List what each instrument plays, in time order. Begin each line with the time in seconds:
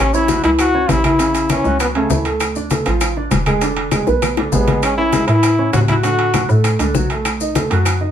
0.00 fm bass A1, trombone C#4
0.14 upright piano C#4 C#5, trombone E4, high bongo, high conga, maracas
0.28 upright piano F#3 F#4, high bongo, high conga, high timbale, maracas
0.43 fm bass C#2, upright piano E3 E4, trombone E4, high conga, high timbale, maracas
0.59 trombone F#4, high bongo, high conga, high timbale, claves, maracas
0.74 upright piano C#4 C#5, high bongo, high conga
0.89 fm bass A1, trombone E4, high bongo, low bongo, high conga, high timbale, low timbale, maracas
1.04 upright piano E3 E4, trombone E4, high conga, high timbale, claves, maracas
1.19 upright piano C#3 C#4, high bongo, high conga, high timbale, maracas
1.34 high bongo, high conga, high timbale, maracas
1.49 upright piano E3 E4, trombone C#4, high bongo, high conga, high timbale, claves, maracas
1.64 fm bass C#2, upright piano F#3 F#4, high conga, maracas
1.80 trombone B3, high bongo, high conga, high timbale, claves, maracas
1.95 upright piano C#3 C#4, trombone A3, high bongo, high conga, high timbale
2.10 fm bass D2, upright piano E3 E4, high bongo, low bongo, high conga, maracas
2.25 upright piano A3 A4, high bongo, high timbale, maracas
2.40 high bongo, high conga, high timbale, claves, maracas
2.55 upright piano D4 D5, high bongo, high conga, maracas
2.70 upright piano A3 A4, high bongo, high conga, high timbale, maracas
2.85 fm bass A1, upright piano F3 F4, high timbale, maracas
3.01 high bongo, high conga, high timbale, claves, maracas
3.16 upright piano D4 D5, high bongo, high conga
3.31 fm bass E1, high bongo, low bongo, high conga, high timbale, maracas
3.46 upright piano G#3 G#4, high bongo, high conga, high timbale, claves, maracas
3.61 upright piano D3 D4, high bongo, high conga, high timbale, maracas
3.77 high bongo, high conga, high timbale
3.91 upright piano G#3 G#4, high bongo, high conga, high timbale, claves, maracas
4.07 fm bass B1, upright piano B3 B4, high bongo, high conga, maracas
4.22 low bongo, high conga, high timbale, claves, maracas
4.37 upright piano D3 D4, high bongo, high conga, high timbale
4.52 fm bass A1, upright piano G#3 G#4, trombone B3, low bongo, high conga, low timbale, maracas
4.67 upright piano G#3 G#4, low bongo, high conga, high timbale, maracas
4.82 trombone C#4, high bongo, high conga, high timbale, claves, maracas
4.97 upright piano C#4 C#5, trombone E4, high bongo, high conga
5.13 upright piano G#3 G#4, high bongo, high conga, high timbale, maracas
5.27 fm bass A2, upright piano E3 E4, trombone E4, high conga, high timbale, maracas
5.43 high bongo, high conga, high timbale, claves, maracas
5.58 upright piano C#4 C#5, high bongo, high conga
5.73 fm bass A2, trombone F#4, high bongo, low bongo, high conga, high timbale, low timbale, maracas
5.88 upright piano F#3 F#4, trombone E4, high bongo, high conga, high timbale, claves, maracas
6.03 upright piano D3 D4, trombone F#4, high bongo, high conga, high timbale, maracas
6.19 high bongo, high conga, high timbale
6.34 upright piano F#3 F#4, high bongo, high conga, high timbale, claves, maracas
6.49 fm bass A2, upright piano A3 A4, high conga, maracas
6.64 high bongo, high conga, high timbale, claves, maracas
6.79 fm bass C#2, upright piano D3 D4, high bongo, high conga, high timbale, maracas
6.94 fm bass B1, upright piano F#3 F#4, high bongo, low bongo, high conga, maracas
7.10 upright piano A3 A4, high bongo, high timbale, maracas
7.25 high bongo, high conga, high timbale, claves, maracas
7.40 upright piano D#4 D#5, high bongo, high conga, maracas
7.55 upright piano A3 A4, high bongo, high conga, high timbale, maracas
7.71 fm bass F#2, upright piano F#3 F#4, high conga, high timbale, maracas
7.85 high bongo, high conga, high timbale, claves, maracas
8.01 upright piano D#4 D#5, high bongo, high conga